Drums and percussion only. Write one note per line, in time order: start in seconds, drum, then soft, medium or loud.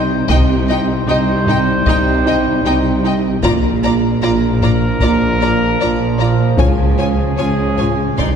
0.29 taiko loud
1.46 taiko low-mid medium
1.86 taiko medium
3.43 taiko loud
4.61 taiko low-mid medium
5.00 taiko medium
6.58 taiko loud
7.78 taiko low-mid medium
8.18 taiko medium